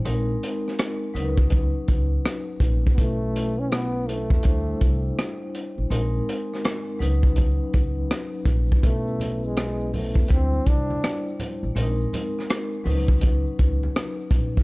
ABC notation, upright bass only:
X:1
M:4/4
L:1/16
Q:"Swing 16ths" 1/4=82
K:C#phr
V:1 name="Upright bass" clef=bass
^A,,,2 z4 C,,4 C,,2 z2 A,,,2 | B,,,6- B,,, E,, D,,2 =C,,2 z3 A,,, | ^A,,,2 z4 C,,4 C,,2 z2 A,,,2 | B,,,6- B,,, E,, D,,2 =C,,2 z3 A,,, |
^A,,,2 z4 C,,4 C,,2 z2 A,,,2 |]